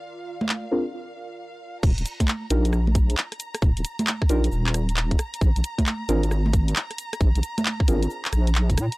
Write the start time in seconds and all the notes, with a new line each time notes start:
Already playing: F4 A#4 D5 F5
0.41 high conga
0.49 clap
0.71 C4 D4 F4 G#4 A#4
1.83 D#1 A#5, kick, crash, cabasa
1.98 D#1, closed hi-hat, cabasa
2.06 closed hi-hat, cabasa
2.20 kick, closed hi-hat, high conga, cabasa
2.28 clap, cabasa
2.50 A#1 D4 D#4 F4 G4 A#4, closed hi-hat, cabasa
2.65 closed hi-hat, cabasa
2.73 cross-stick, cabasa
2.87 high conga
2.95 kick, closed hi-hat, cabasa
3.10 closed hi-hat, cabasa
3.18 clap, cabasa
3.32 cross-stick, closed hi-hat
3.40 closed hi-hat, cabasa
3.55 cross-stick, closed hi-hat, cabasa
3.62 D#1, kick, cabasa
3.77 D#1, closed hi-hat, cabasa
3.85 closed hi-hat, cabasa
3.99 closed hi-hat, high conga, cabasa
4.07 clap, cabasa
4.22 kick, cross-stick
4.29 A#1 D4 D#4 F4 G4 A#4, closed hi-hat, cabasa
4.44 closed hi-hat, cabasa
4.52 D#1, cabasa
4.67 clap
4.74 cross-stick, closed hi-hat, cabasa
4.89 closed hi-hat, cabasa
4.97 clap, cabasa
5.11 kick, closed hi-hat
5.19 cross-stick, closed hi-hat, cabasa
5.34 closed hi-hat, cabasa
5.41 A#1, kick, cabasa
5.56 A#1, closed hi-hat, cabasa
5.64 closed hi-hat, cabasa
5.78 kick, closed hi-hat, high conga, cabasa
5.86 clap, cabasa
6.09 G#1 C4 D4 F4 G#4 A#4, closed hi-hat, cabasa
6.23 closed hi-hat, cabasa
6.31 cross-stick, cabasa
6.46 high conga
6.53 kick, closed hi-hat, cabasa
6.68 closed hi-hat, cabasa
6.76 clap, cabasa
6.91 cross-stick, closed hi-hat
6.98 closed hi-hat, cabasa
7.13 cross-stick, closed hi-hat, cabasa
7.21 A#1, kick, cabasa
7.35 A#1, closed hi-hat, cabasa
7.43 closed hi-hat, cabasa
7.58 closed hi-hat, high conga, cabasa
7.66 clap, cabasa
7.80 kick, cross-stick
7.88 G#1 C4 D4 F4 G#4 A#4, closed hi-hat, cabasa
8.03 closed hi-hat, cabasa
8.10 cabasa
8.25 clap, cabasa
8.33 A#1, cross-stick, closed hi-hat, cabasa
8.47 closed hi-hat, cabasa
8.55 clap, cabasa
8.70 F1, kick, closed hi-hat, cabasa
8.77 A#2, cross-stick, closed hi-hat, cabasa
8.92 closed hi-hat, cabasa